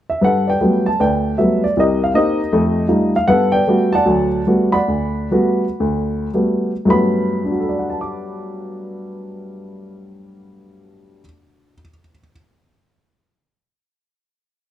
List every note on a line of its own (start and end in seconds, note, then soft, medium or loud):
0.10 0.23 E5 medium
0.21 0.55 G2 medium
0.21 0.96 A4 soft
0.21 0.47 B4 medium
0.21 0.49 F#5 medium
0.47 0.98 B4 soft
0.47 0.99 D5 soft
0.47 0.88 G5 medium
0.61 0.87 F#3 soft
0.61 0.87 G3 soft
0.61 0.87 A3 soft
0.61 0.87 B3 medium
0.86 1.00 A5 medium
1.00 1.33 D2 medium
1.00 1.72 B4 soft
1.00 1.62 D5 medium
1.00 1.36 G5 medium
1.38 1.64 F#3 soft
1.38 1.64 G3 soft
1.38 1.64 A3 soft
1.38 1.64 B3 soft
1.38 1.63 E5 medium
1.64 1.77 D5 medium
1.77 2.09 C2 medium
1.77 2.15 G4 medium
1.77 2.16 A#4 medium
1.77 2.01 D#5 medium
2.04 2.16 F5 medium
2.14 2.40 A#3 soft
2.14 2.40 C4 soft
2.14 2.40 D#4 medium
2.14 3.11 G4 soft
2.14 2.51 A#4 medium
2.14 3.10 D#5 medium
2.53 2.85 F2 medium
2.53 2.85 A3 medium
2.88 3.14 G3 soft
2.88 3.15 A3 soft
2.88 3.15 D#4 soft
2.88 3.15 F4 soft
3.16 3.28 F5 medium
3.28 3.61 G2 medium
3.28 3.61 B3 medium
3.28 4.02 A4 medium
3.28 3.52 B4 medium
3.28 3.50 F#5 medium
3.52 4.28 B4 soft
3.52 3.93 D5 medium
3.52 3.92 G5 medium
3.67 3.94 G3 soft
3.67 3.93 A3 soft
3.67 3.94 B3 soft
3.67 3.94 F#4 medium
3.93 4.70 D5 medium
3.93 4.70 F#5 medium
3.93 4.42 A5 medium
4.06 4.40 D2 medium
4.06 4.40 F#3 medium
4.47 4.74 G3 soft
4.47 4.75 A3 soft
4.47 4.75 B3 soft
4.47 4.75 F#4 medium
4.72 6.29 D5 medium
4.72 6.29 F#5 medium
4.72 6.28 B5 medium
4.88 5.26 D2 medium
5.31 5.63 G3 soft
5.31 5.64 A3 soft
5.31 5.64 B3 soft
5.31 5.64 F#4 medium
5.80 6.25 D2 medium
6.34 6.70 G3 soft
6.34 6.71 A3 soft
6.34 6.71 B3 soft
6.34 6.71 F#4 soft
6.85 11.19 G2 medium
6.85 11.21 F#3 medium
6.85 11.21 A3 medium
6.85 11.23 B3 medium
6.90 11.20 B5 medium
7.44 11.74 D4 soft
7.51 11.81 F#4 soft
7.60 11.90 A4 soft
7.69 11.99 D5 soft
7.79 12.09 F#5 soft
7.90 12.20 A5 soft
8.01 12.31 D6 soft